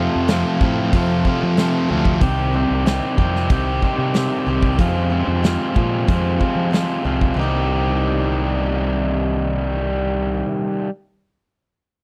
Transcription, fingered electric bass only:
0.16 0.43 F2 medium
0.61 0.90 A2 medium
0.92 1.21 F2 medium
1.43 1.71 F3 medium
1.90 2.19 D2 medium
2.21 2.64 C2 medium
2.70 2.99 C2 medium
3.18 3.47 F2 medium
3.50 3.79 C2 medium
3.98 4.27 C3 medium
4.46 4.75 C2 medium
4.79 5.22 F2 medium
5.27 5.56 F2 medium
5.76 6.05 A#2 medium
6.08 6.37 F2 medium
6.56 6.85 F3 medium
7.05 7.34 C2 medium
7.36 10.42 C2 medium

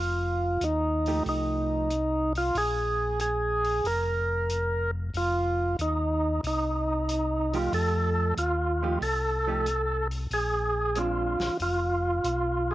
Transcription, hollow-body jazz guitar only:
1.08 1.88 F3 medium
1.08 1.88 A3 medium
1.08 1.88 D#4 medium
1.08 1.88 G4 medium
7.54 8.34 F3 medium
7.54 8.34 A3 medium
7.54 8.34 D#4 medium
7.54 8.35 G4 medium
8.83 9.01 F3 medium
8.83 9.01 A3 medium
8.83 9.01 D#4 medium
8.83 9.01 G4 medium
9.47 9.65 F3 medium
9.47 9.66 A3 medium
9.47 9.66 D#4 medium
9.47 9.66 G4 medium
10.96 11.36 G#3 medium
10.96 11.36 C4 soft
10.96 11.37 D4 medium

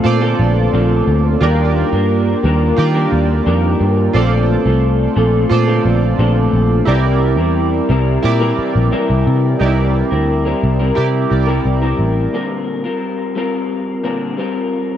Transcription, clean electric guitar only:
0.00 0.21 A3 medium
0.00 0.21 C4 medium
0.00 0.21 F4 medium
0.00 0.20 A4 medium
0.21 0.72 A#2 medium
0.21 0.72 D3 medium
0.21 0.72 A3 medium
0.21 0.72 C4 medium
0.21 0.73 F4 medium
0.21 0.73 A4 medium
0.73 1.41 A#2 medium
0.73 1.41 D3 medium
0.73 1.42 A3 medium
0.73 1.42 C4 medium
0.73 1.42 F4 loud
0.73 1.42 A4 loud
1.42 1.93 D#3 medium
1.42 1.93 G3 medium
1.42 1.93 A#3 medium
1.42 1.93 D4 medium
1.42 1.91 A#4 medium
1.92 2.43 A#3 soft
1.92 2.44 D4 medium
1.92 2.44 A#4 medium
2.43 2.95 G3 medium
2.43 2.94 A#3 medium
2.43 2.94 D4 medium
2.43 2.93 A#4 medium
2.94 3.45 D#3 medium
2.94 3.45 G3 medium
2.94 3.46 A#3 medium
2.94 3.46 D4 medium
2.94 3.46 A#4 medium
3.46 4.14 D#3 loud
3.46 4.15 G3 medium
3.46 4.15 A#3 medium
3.46 4.15 D4 loud
3.46 4.16 A#4 loud
4.15 4.66 A#2 medium
4.15 4.66 D3 medium
4.15 4.66 A3 medium
4.15 4.66 C4 medium
4.15 4.65 F4 medium
4.15 4.64 A4 medium
4.65 5.14 A3 medium
4.65 5.15 C4 medium
4.65 5.16 F4 medium
4.65 5.17 A4 medium
5.16 5.67 A3 medium
5.16 5.67 C4 medium
5.16 5.67 F4 medium
5.16 5.66 A4 medium
5.67 6.17 A#2 medium
5.67 6.17 D3 medium
5.67 6.18 A3 medium
5.67 6.18 C4 medium
5.67 6.18 F4 medium
5.67 6.19 A4 medium
6.18 6.86 A#2 medium
6.18 6.87 D3 medium
6.18 6.87 A3 loud
6.18 6.87 C4 loud
6.18 6.87 F4 medium
6.18 6.88 A4 loud
6.87 7.38 C3 medium
6.87 7.38 E3 medium
6.87 7.38 G3 medium
6.87 7.38 C4 medium
6.87 7.37 E4 medium
6.87 7.36 A#4 loud
7.37 7.88 G3 medium
7.37 7.89 C4 medium
7.37 7.89 E4 soft
7.37 7.89 A#4 medium
7.89 8.40 G3 medium
7.89 8.40 C4 medium
7.89 8.40 E4 medium
7.89 8.39 A#4 medium
8.40 8.90 C3 medium
8.40 8.90 E3 medium
8.40 8.91 G3 medium
8.40 8.91 C4 medium
8.40 8.91 E4 medium
8.40 8.92 A#4 medium
8.91 9.59 C3 medium
8.91 9.60 E3 medium
8.91 9.60 G3 loud
8.91 9.61 C4 medium
8.91 9.61 E4 loud
8.91 9.61 A#4 loud
9.60 10.11 C3 medium
9.60 10.11 E3 medium
9.60 10.12 G3 medium
9.60 10.12 C4 medium
9.60 10.10 E4 medium
9.60 10.09 A#4 medium
10.11 10.46 G3 soft
10.11 10.46 C4 soft
10.11 10.45 E4 medium
10.11 10.44 A#4 medium
10.45 10.80 G3 medium
10.45 10.80 C4 medium
10.45 10.79 E4 medium
10.45 10.78 A#4 medium
10.79 11.49 G3 soft
10.79 11.48 C4 soft
10.79 11.47 E4 soft
10.79 11.47 A#4 medium
11.47 11.83 G3 soft
11.47 11.82 C4 soft
11.47 11.81 E4 medium
11.47 11.81 A#4 medium
11.82 12.33 G3 soft
11.82 12.33 C4 soft
11.82 12.33 E4 soft
11.82 12.33 A#4 medium
12.33 12.84 A#2 medium
12.33 12.84 D3 medium
12.33 12.84 G3 medium
12.33 12.84 C4 medium
12.33 12.83 F4 medium
12.33 12.83 A#4 medium
12.84 13.34 G3 soft
12.84 13.35 C4 soft
12.84 13.35 F4 soft
12.84 13.35 A#4 soft
13.35 14.04 G3 medium
13.35 14.04 C4 medium
13.35 14.03 F4 medium
13.35 14.05 A#4 medium
14.04 14.38 A#2 medium
14.04 14.38 D3 medium
14.04 14.36 G3 medium
14.04 14.37 C4 medium
14.04 14.37 F4 medium
14.04 14.38 A#4 medium
14.37 14.97 G3 medium
14.37 14.97 C4 medium
14.37 14.97 F4 medium
14.37 14.97 A#4 medium

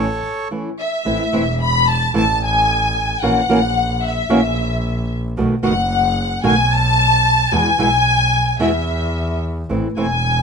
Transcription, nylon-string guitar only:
0.51 0.69 E3 medium
0.51 0.69 A3 soft
0.51 0.69 C#4 medium
0.51 0.69 E4 medium
1.05 1.23 E3 medium
1.05 1.23 A3 medium
1.05 1.23 C4 soft
1.05 1.23 E4 medium
1.33 1.42 E3 medium
1.33 1.42 A3 medium
1.33 1.43 C4 medium
1.33 1.43 E4 medium
2.14 2.23 E3 medium
2.14 2.24 A3 medium
2.14 2.24 C4 medium
2.14 2.24 E4 medium
3.22 3.39 E3 medium
3.22 3.40 A#3 soft
3.22 3.40 C#4 medium
3.22 3.40 F#4 medium
3.22 3.40 A#4 medium
3.49 3.58 E3 medium
3.49 3.59 A#3 medium
3.49 3.59 C#4 medium
3.49 3.59 F#4 medium
3.49 3.59 A#4 medium
4.29 4.39 E3 medium
4.29 4.39 A#3 medium
4.29 4.39 C#4 medium
4.29 4.39 F#4 medium
4.29 4.39 A#4 medium
5.37 5.54 B2 medium
5.37 5.54 D#3 medium
5.37 5.54 A3 medium
5.37 5.54 B3 medium
5.37 5.55 F#4 medium
5.63 5.72 B2 medium
5.63 5.73 D#3 medium
5.63 5.73 A3 medium
5.63 5.73 B3 medium
5.63 5.73 F#4 medium
6.44 6.53 B2 medium
6.44 6.53 D#3 medium
6.44 6.53 A3 medium
6.44 6.54 B3 medium
6.44 6.54 F#4 medium
7.52 7.69 B2 medium
7.52 7.69 E3 medium
7.52 7.69 G#3 medium
7.52 7.69 B3 medium
7.52 7.69 E4 medium
7.79 7.88 B2 medium
7.79 7.88 E3 medium
7.79 7.88 G#3 medium
7.79 7.88 B3 medium
7.79 7.88 E4 medium
8.60 8.69 B2 medium
8.60 8.69 E3 medium
8.60 8.69 G#3 medium
8.60 8.69 B3 medium
8.60 8.70 E4 medium
9.69 9.86 E3 medium
9.69 9.87 A3 medium
9.69 9.87 C4 medium
9.69 9.87 E4 medium
9.97 10.06 E3 medium
9.97 10.06 A3 medium
9.97 10.06 C4 medium
9.97 10.06 E4 medium

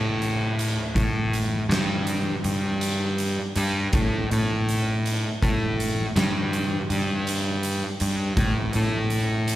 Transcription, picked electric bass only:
0.00 0.77 A2 medium
0.95 1.57 A2 medium
1.69 2.31 G2 loud
2.45 3.37 G2 medium
3.56 3.87 G2 medium
3.93 4.24 A2 medium
4.32 5.23 A2 medium
5.42 6.04 A2 medium
6.16 6.77 G2 loud
6.90 7.82 G2 medium
8.01 8.32 G2 medium
8.37 8.68 A2 loud
8.75 9.56 A2 medium

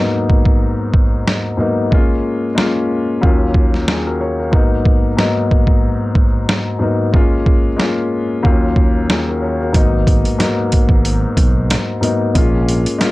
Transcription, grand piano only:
0.00 1.57 G#2 medium
0.00 1.58 F#3 medium
0.00 1.59 A#3 medium
0.00 1.60 B3 medium
0.00 1.60 D#4 medium
1.57 1.85 G#2 medium
1.57 1.86 F#3 medium
1.57 1.86 A#3 medium
1.57 1.87 B3 medium
1.57 1.87 D#4 medium
1.91 2.46 G#3 medium
1.91 2.46 A#3 medium
1.91 2.47 C#4 medium
1.91 2.47 F4 loud
2.55 3.21 G#3 medium
2.55 3.21 A#3 medium
2.55 3.22 C#4 medium
2.55 3.23 F4 loud
3.21 4.03 D#2 medium
3.21 4.03 F#3 medium
3.21 4.04 A#3 medium
3.21 4.04 C#4 medium
3.21 3.87 F4 medium
3.88 4.06 F4 medium
3.88 4.05 G#4 medium
4.07 4.20 F#4 medium
4.07 4.20 A#4 medium
4.21 4.38 A#4 medium
4.21 4.38 C#5 medium
4.39 4.70 F#4 medium
4.39 4.70 A#4 medium
4.51 5.06 G#2 medium
4.51 5.07 F#3 medium
4.51 5.07 A#3 medium
4.51 5.08 B3 medium
4.51 5.08 D#4 medium
5.17 6.24 G#2 medium
5.17 6.24 F#3 medium
5.17 6.25 A#3 medium
5.17 6.25 B3 medium
5.17 6.25 D#4 medium
6.79 7.07 G#2 medium
6.79 7.07 F#3 medium
6.79 7.08 A#3 medium
6.79 7.08 B3 medium
6.79 7.09 D#4 medium
7.13 7.67 G#3 medium
7.13 7.68 A#3 medium
7.13 7.69 C#4 medium
7.13 7.69 F4 loud
7.76 8.43 G#3 medium
7.76 8.43 A#3 medium
7.76 8.44 C#4 medium
7.76 8.45 F4 loud
8.43 9.24 D#2 medium
8.43 9.25 F#3 medium
8.43 9.25 A#3 medium
8.43 9.25 C#4 medium
8.43 9.09 F4 medium
9.10 9.27 F4 medium
9.10 9.27 G#4 medium
9.28 9.42 F#4 medium
9.28 9.41 A#4 medium
9.42 9.59 A#4 medium
9.42 9.59 C#5 medium
9.60 9.92 F#4 medium
9.60 9.91 A#4 medium
9.73 10.28 G#2 medium
9.73 10.28 F#3 medium
9.73 10.29 A#3 medium
9.73 10.29 B3 medium
9.73 10.30 D#4 medium
10.38 11.46 G#2 medium
10.38 11.46 F#3 medium
10.38 11.46 A#3 medium
10.38 11.47 B3 medium
10.38 11.47 D#4 medium
12.01 12.29 G#2 medium
12.01 12.29 F#3 medium
12.01 12.30 A#3 medium
12.01 12.30 B3 medium
12.01 12.30 D#4 medium
12.34 12.89 G#3 medium
12.34 12.90 A#3 medium
12.34 12.90 C#4 medium
12.34 12.91 F4 loud
12.98 13.12 G#3 medium
12.98 13.12 A#3 medium
12.98 13.12 C#4 medium
12.98 13.12 F4 loud

